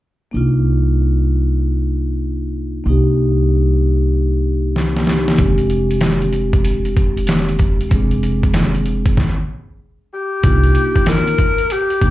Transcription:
0.31 C2 A#3 D4 D#4
0.37 F4
2.84 C2 A#3 D4 D#4
2.89 G4
4.76 snare
4.96 snare
5.06 A#3 D4 D#4 G4, snare
5.28 snare
5.36 F1 G#3 C4 D4, kick, closed hi-hat
5.42 G4
5.58 closed hi-hat
5.70 closed hi-hat
5.91 closed hi-hat
6.01 snare, closed hi-hat
6.22 closed hi-hat
6.33 closed hi-hat
6.53 kick, closed hi-hat
6.65 closed hi-hat
6.85 closed hi-hat
6.97 kick, closed hi-hat
7.17 closed hi-hat
7.27 snare, closed hi-hat
7.49 closed hi-hat
7.59 kick, closed hi-hat
7.81 closed hi-hat
7.89 F1 G#3 C4 D4, kick, closed hi-hat
7.94 G#4
8.11 closed hi-hat
8.23 closed hi-hat
8.43 kick, closed hi-hat
8.54 snare, closed hi-hat
8.75 closed hi-hat
8.86 closed hi-hat
9.06 kick, closed hi-hat
9.17 kick, snare
10.14 G4
10.42 C2 A#3 D4 D#4 F4, kick, closed hi-hat
10.64 closed hi-hat
10.75 closed hi-hat
10.96 kick, closed hi-hat
11.06 A#4, snare, closed hi-hat
11.27 closed hi-hat
11.38 kick, closed hi-hat
11.58 closed hi-hat
11.70 G4, closed hi-hat
11.90 closed hi-hat
12.00 C2 A#3 D4 D#4 G4, kick, closed hi-hat

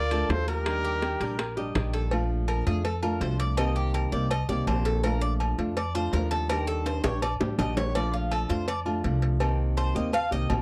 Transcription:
Already playing: D2 F4 A#4 D5
0.11 A3 D4 F4 A4, high timbale
0.29 D#2 F3 A3 D4 F4 A4 C5, high bongo, low bongo, low timbale
0.48 G4 A#4, high timbale
0.66 D#3 G3 D4 G4, high bongo, high timbale
0.84 G4, high bongo
1.02 high bongo, high timbale
1.21 A#1 G3 D4 G4 A#4, high timbale
1.39 muted nylon-string guitar stroke, high bongo, high timbale
1.57 G3 D4 G4 D#5, high bongo
1.75 A#1 D#3 G3 D4 G4, high bongo, low bongo, high timbale
1.93 A4, high bongo, high timbale
2.11 F3 A3 D4 F4, cowbell, low agogo
2.48 A#4, cowbell, low agogo
2.66 F2 A3 D4 F4 G#4, cowbell
2.85 A4, muted nylon-string guitar stroke, cowbell, low agogo
3.03 A3 D4 F4 A#4, low agogo
3.21 C2 F3 A3 D4 F4 C5, cowbell, low timbale
3.40 D5, cowbell
3.57 C3 D#3 A#3 C4 G4 D#5, cowbell, low agogo
3.76 G4
3.94 A#4, cowbell, low agogo
4.12 C2 D#3 A#3 C4 G4 D5
4.30 D#5, muted nylon-string guitar stroke, cowbell, low agogo
4.49 C2 D#3 A#3 C4 G4 D5
4.67 A#1 D#3 A#3 C4 G4 C5, cowbell, low timbale, low agogo
4.85 A4, cowbell
5.03 F3 A3 D4 F4 A#4, cowbell, low agogo
5.21 D5
5.40 cowbell, low agogo
5.58 F2 A3 D4 F4, cowbell
5.76 D5, muted nylon-string guitar stroke, cowbell, low agogo
5.95 A3 D4 F4 C5, low agogo
6.13 D#2 F3 A3 D4 F4 A#4, cowbell, low timbale
6.31 A4, cowbell
6.49 D#3 G3 D4 G4 A#4, cowbell, low agogo
6.67 A4
6.86 C5, cowbell, high timbale, low agogo
7.04 A#1 G3 D4 G4 C#5, high bongo, high timbale
7.22 D5, muted nylon-string guitar stroke, cowbell, low agogo
7.40 A1 G3 D4 G4, low bongo, low timbale
7.58 A#1 D#3 G3 D4 G4 D#5, cowbell, low bongo, low agogo
7.77 C#5, cowbell, low bongo, low timbale
7.95 F3 A3 D4 F4 D5, cowbell, low agogo
8.14 F4
8.31 A4, cowbell, low agogo
8.49 F2 A3 D4 F4 C5, cowbell
8.67 D5, muted nylon-string guitar stroke, cowbell, low agogo
8.86 A3 D4 F4, low agogo
9.04 C2 F3 A3 D4 F4, cowbell
9.22 cowbell
9.40 C3 D#3 A#3 C4 G4, cowbell, low agogo
9.77 C5, cowbell, low agogo
9.95 D#2 D#3 A#3 C4 G4 D#5
10.12 F5, muted nylon-string guitar stroke, cowbell, low agogo
10.31 C2 D#3 A#3 C4 G4 D#5
10.50 A#1 D#3 A#3 C4 G4, cowbell, low timbale, low agogo

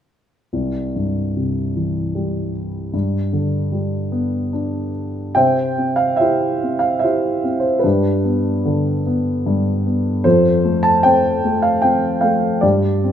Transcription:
0.53 C2
0.96 G2
1.37 C3
1.76 E3
2.15 G3
2.94 G2
3.33 D3
3.72 G3
4.12 B3
4.53 D4
5.35 C3 C5 E5 G5
5.78 C4
5.96 F5
6.17 G4 C5 E5
6.21 E4
6.63 C4
6.79 F5
6.99 C5 E5
7.04 E4 G4
7.44 C4
7.60 C5
7.79 B4
7.83 G2 D4 G4
8.24 B3
8.65 D3
9.07 B3
9.46 G2
9.87 B3
10.24 F2 F4 A4 C5
10.65 A3
10.83 A5
11.03 C4 C5 G5
11.44 A3
11.62 F5
11.82 C4 G5
12.21 A3 F5
12.61 G2 G4 D5
13.04 C4

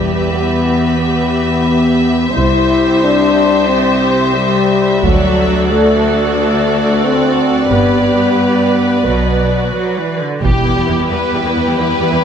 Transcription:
Already playing: E2 G3 G4 B4 E5
0.32 B3
0.98 B3
2.34 C2 E4 G4 C5
3.04 D4
3.68 C4
4.36 G3
5.03 D2 F#3 F#4 A4 D5, taiko
5.70 A3 D5
6.36 A3
7.05 C4
7.70 G1 G2 B3 G4 B4
9.04 B1 B2 F#3 F#4
9.75 F#3
9.97 E3
10.20 D3
10.42 E1 E2 G3 B3 E4 G4, taiko
10.63 E2 E3
10.74 E2 G3
10.87 E2 E3
10.99 E2 E3
11.10 E2 G3 B4
11.33 E2 G3
11.44 E2 E3
11.56 E2 E3
11.66 E2 G3
11.78 E2 E3 B4
11.89 E2 E3
12.00 E2 G3
12.11 E2 E3

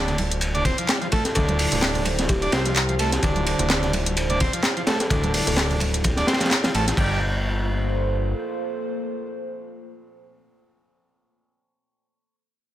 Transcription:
Already playing: D1 D3 G3 E4 F4 C5
0.08 snare, closed hi-hat, low conga
0.18 ride, high conga
0.31 closed hi-hat
0.41 closed hi-hat, ride
0.54 D4, closed hi-hat, low conga
0.65 C4, kick, ride
0.78 F3, closed hi-hat
0.89 snare, clap, closed hi-hat, ride
1.01 F3, closed hi-hat
1.12 A3 A4, kick, ride
1.25 A4, snare, closed hi-hat
1.35 D1 D3 A4, kick, closed hi-hat, ride
1.49 closed hi-hat, high conga
1.59 D3, open hi-hat, ride
1.72 D1, closed hi-hat, low conga
1.82 snare, clap, closed hi-hat, ride
1.95 closed hi-hat, low conga
2.05 ride, high conga
2.19 snare, closed hi-hat
2.29 G4, kick, closed hi-hat, ride
2.42 D4 G4, closed hi-hat, ride
2.52 C2 C4 G4, snare, ride
2.66 F3 G4, snare, closed hi-hat
2.75 clap, closed hi-hat, ride
2.89 F3, closed hi-hat
2.99 A3, ride
3.12 snare, closed hi-hat
3.23 D1 D3, kick, closed hi-hat, ride
3.36 closed hi-hat, high conga
3.47 D3, ride
3.59 D1, closed hi-hat, low conga
3.70 snare, clap, closed hi-hat, ride
3.83 snare, closed hi-hat, low conga
3.93 ride, high conga
4.06 closed hi-hat
4.17 closed hi-hat, ride
4.30 D4, closed hi-hat, low conga
4.40 C4, kick, ride
4.53 F3, closed hi-hat
4.63 snare, clap, closed hi-hat, ride
4.77 F3, closed hi-hat
4.87 A3 A4, snare, ride
5.00 A4, snare, closed hi-hat
5.10 D1 D3 A4, kick, closed hi-hat, ride
5.24 closed hi-hat, high conga
5.34 D3, open hi-hat, ride
5.47 D1 A4, closed hi-hat, low conga
5.57 snare, clap, closed hi-hat, ride
5.70 closed hi-hat, high conga, low conga
5.80 ride, high conga
5.94 closed hi-hat
6.04 kick, closed hi-hat, ride
6.16 D4, snare, closed hi-hat, ride
6.27 C4, snare, ride
6.33 snare, ride
6.40 F3, snare, closed hi-hat, ride
6.45 snare, ride
6.51 snare, clap, closed hi-hat, ride
6.64 F3, snare, closed hi-hat, ride
6.74 A1 A3, ride
6.88 snare, closed hi-hat
6.97 G1 G3 A#3 F4 A4 C5, kick, crash

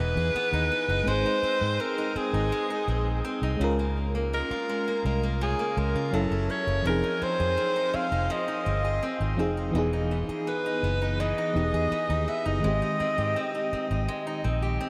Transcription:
Already playing: E3 B3 D#4 G#4 B4
0.00 E1 B3
0.16 E2 G#4
0.35 B3, muted fingered electric bass stroke
0.53 D#2 D#4
0.71 B3
0.88 F#1 D#4
1.04 G#1 G#3 C4
1.08 D#4 G#4 C5
1.26 D#4
1.43 C4, muted fingered electric bass stroke
1.61 G#2
1.80 C4 A#4
1.98 D#4
2.16 C4 G#4, muted fingered electric bass stroke
2.33 G#1 D#4
2.52 G#3
2.70 D#4
2.88 A#1 C4
3.25 C4
3.42 C2 D#4
3.57 C#2 G#3 C#4
3.61 C#3 F4 A#4
3.79 A#3
4.15 A#3
4.33 G#3 A#4
4.51 F4, muted fingered electric bass stroke
4.69 G#3
4.88 A#3
5.05 C2 G#3 A#4
5.23 A#3
5.41 C#3 G#4
5.59 A#3
5.77 C#2 G#3 A#4
5.95 C#3 F4
6.11 F#1 F#3 C#4 E4 A4
6.31 F#1 E4
6.50 C#4 C#5
6.67 F#1 E4
6.82 F1 F3 C4
6.87 D#4 G#4 A#4
7.04 D#4
7.22 C4 C5, muted fingered electric bass stroke
7.40 F2 G#4
7.57 C4
7.76 D#4
7.94 C4 F5, muted fingered electric bass stroke
8.12 F1 D#4
8.30 F3 D#5
8.48 D#4
8.66 G1 C4
8.85 G#4
9.03 C4
9.20 G#1 D#4
9.37 F1 F3 C4 D#4 G#4
9.57 D#4
9.71 E1 E3 B3
9.75 E3 D#4 G#4
9.93 D#4
10.11 B3
10.29 G#4, muted fingered electric bass stroke
10.47 B3 B4
10.66 D#4
10.83 F#1 B3
11.02 D#4
11.20 E3 D#5
11.38 D#4
11.53 E1 E3 B3 D#4 G4
11.64 G#4
11.73 E2 G#4
11.91 B3, muted fingered electric bass stroke
12.09 D#2 D#4
12.28 B3 E5
12.46 F#1 D#4 D#5
12.60 D#3 G#3
12.64 G#1 G#3 C4 G4
12.82 D#4
13.00 C4, muted fingered electric bass stroke
13.18 G#2 G4
13.36 C4
13.55 D#4
13.73 C4, muted fingered electric bass stroke
13.91 G#1 D#4
14.08 G#3
14.27 D#4
14.44 A#1 C4
14.62 G4
14.81 C4

